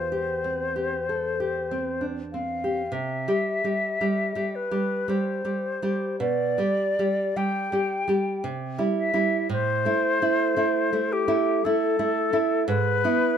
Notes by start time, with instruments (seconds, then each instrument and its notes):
Already playing: nylon-string guitar E2 F4, flute C5
0.12 nylon-string guitar G4
0.44 nylon-string guitar C4
0.76 nylon-string guitar G4
1.09 nylon-string guitar A4
1.40 nylon-string guitar G4
1.71 nylon-string guitar C4
2.01 nylon-string guitar D4
2.33 nylon-string guitar C4, flute F5
2.64 nylon-string guitar G4
2.92 nylon-string guitar C3, flute E5
3.28 nylon-string guitar G3 G4
3.64 nylon-string guitar G3 G4
4.01 nylon-string guitar G3 G4
4.35 nylon-string guitar G3 G4
4.55 flute B4
4.71 nylon-string guitar G3 G4
5.08 nylon-string guitar G3 G4, flute C5
5.45 nylon-string guitar G3 G4
5.82 nylon-string guitar G3 G4
6.20 nylon-string guitar B2, flute D5
6.58 nylon-string guitar G3 G4
6.99 nylon-string guitar G3 G4
7.36 nylon-string guitar G3 G4, flute G5
7.72 nylon-string guitar G3 G4
8.08 nylon-string guitar G3 G4
8.44 nylon-string guitar C3
8.78 nylon-string guitar G3 E4
8.99 flute E5
9.14 nylon-string guitar G3 E4
9.49 nylon-string guitar A2, flute C5
9.85 nylon-string guitar A3 E4
10.22 nylon-string guitar A3 E4
10.56 nylon-string guitar A3 E4
10.93 nylon-string guitar A3 E4
11.13 flute G4
11.28 nylon-string guitar A3 E4
11.65 nylon-string guitar A3 E4, flute A4
11.99 nylon-string guitar A3 E4
12.33 nylon-string guitar A3 E4
12.67 nylon-string guitar G#2, flute B4
13.04 nylon-string guitar B3 E4